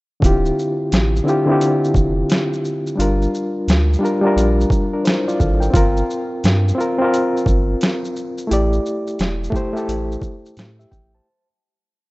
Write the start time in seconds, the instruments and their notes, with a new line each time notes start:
0.20 sub bass D1, reed electric piano D3 C4 E4, kick, closed hi-hat, shaker
0.25 reed electric piano F4 G4
0.45 shaker
0.59 shaker
0.92 sub bass A1, snare, closed hi-hat, shaker
1.16 shaker
1.24 reed electric piano D3 C4 E4
1.28 reed electric piano F4 G4, shaker
1.46 reed electric piano D3 C4 E4
1.50 reed electric piano F4 G4
1.61 closed hi-hat, shaker
1.84 shaker
1.94 sub bass F1, kick, shaker
2.30 snare, closed hi-hat, shaker
2.53 shaker
2.65 shaker
2.87 shaker
2.95 sub bass G1, reed electric piano G3 D4 F4
3.00 reed electric piano A#4, closed hi-hat, shaker
3.22 shaker
3.35 shaker
3.68 sub bass D2, snare, closed hi-hat, shaker
3.93 shaker
3.99 reed electric piano G3 D4 F4
4.05 reed electric piano A#4, shaker
4.21 reed electric piano G3 D4 F4
4.27 reed electric piano A#4
4.36 sub bass A#1, closed hi-hat, shaker
4.61 shaker
4.70 kick, shaker
4.93 reed electric piano D4 A#4
5.04 reed electric piano E4 C5, snare, closed hi-hat, shaker
5.28 reed electric piano F4 D5, shaker
5.40 sub bass G#1, reed electric piano A4 F5, kick, shaker
5.60 reed electric piano A#4 G5, shaker
5.71 sub bass G1, reed electric piano C4 F4, kick
5.75 reed electric piano A#4, closed hi-hat, shaker
5.97 shaker
6.10 shaker
6.44 sub bass G2, snare, closed hi-hat, shaker
6.68 shaker
6.75 reed electric piano C4 F4
6.80 reed electric piano A#4, shaker
6.98 reed electric piano C4 F4
7.04 reed electric piano A#4
7.14 closed hi-hat, shaker
7.37 shaker
7.46 sub bass G1, kick, shaker
7.81 snare, closed hi-hat, shaker
8.05 shaker
8.16 shaker
8.38 shaker
8.47 sub bass A1, reed electric piano A3 E4
8.51 reed electric piano G4 D5, closed hi-hat, shaker
8.73 shaker
8.86 shaker
9.07 shaker
9.19 sub bass E1, snare, closed hi-hat, shaker
9.44 shaker
9.50 reed electric piano A3 E4 G4, kick
9.55 reed electric piano C5, shaker
9.73 reed electric piano A3 E4 G4, shaker
9.79 reed electric piano A4
9.88 sub bass A1, closed hi-hat, shaker
10.12 shaker
10.22 kick, shaker
10.46 shaker
10.57 sub bass A2, snare, closed hi-hat, shaker
10.79 reed electric piano G4 E5, shaker
10.91 sub bass A1, reed electric piano G5, kick, shaker
11.15 reed electric piano C5 A5